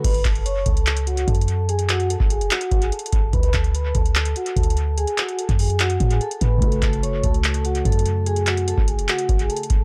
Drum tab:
CC |x-----------------------------------------------|------------------------------------------------|------------------------------------------------|------------------------------------------------|
HH |x--x--x--x--x-----x--x--x--x--x--x--x-x-x-x-----|x--x--x--x--x-----x--x--x--x--x--x--x-x-x-x-----|x--x--x--x--x-----x--x--x--x--x--x--x-x-x-x-----|x--x--x--x--x--x--o--x--x--x--x--x--x--x--x-----|
CP |------x-----------------x-----------------------|------x-----------------x-----------------------|------x-----------------x-----------------------|------x-----------------x-----------------------|
BD |o-----o-----------o-----------------o-----------|---------------o--------------o-----------o-----|o-----o-----------o-----------------o-----------|---------------o--------------o-----------o-----|

CC |------------------------------------------------|------------------------------------------------|
HH |x--x--x--x--x-----x--x--x--x--x--x--x-x-x-x-----|x--x--x--x--x-----x--x--x--x--x--x--x-x-x-x-----|
CP |------x-----------------x-----------------------|------x-----------------x-----------------------|
BD |o-----o-----------o-----------------o-----------|---------------o--------------o-----------o-----|